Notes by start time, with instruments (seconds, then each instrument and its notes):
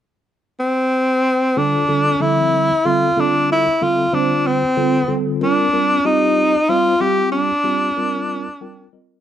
0.60 tenor saxophone C4
1.56 tine electric piano D3 G3 C4 F4 A4, tenor saxophone D4
1.88 tine electric piano D3 G3 C4 F4 A4
2.20 tine electric piano D3 F3 G3 C4 A4, tenor saxophone E4
2.85 tine electric piano D3 G3 C4 F4 A4, tenor saxophone F4
3.16 tine electric piano D3 G3 C4 F4 A4, tenor saxophone D4
3.52 tenor saxophone E4
3.81 tine electric piano D3 G3 C4 F4 A4, tenor saxophone F4
4.13 tine electric piano D3 G3 C4 F4 C5, tenor saxophone D4
4.47 tenor saxophone C4
4.77 tine electric piano D3 G3 C4 F4 A4
5.08 tine electric piano D3 G3 C4 F4 A4
5.41 tine electric piano G3 C4 F4 A#4, tenor saxophone D4
5.73 tine electric piano G3 C4 F4 A#4
6.04 tine electric piano G3 C4 F4 G4, tenor saxophone D#4
6.69 tine electric piano G3 C4 F4 C5, tenor saxophone F4
7.00 tine electric piano G3 C4 F4 G4, tenor saxophone G4
7.32 tenor saxophone D4
7.64 tine electric piano G3 C4 F4 G4
7.97 tine electric piano G3 C4 F4 A#4
8.61 tine electric piano G3 C4 F4 A#4 G5
8.93 tine electric piano G3 C4 F4 A#4 D#5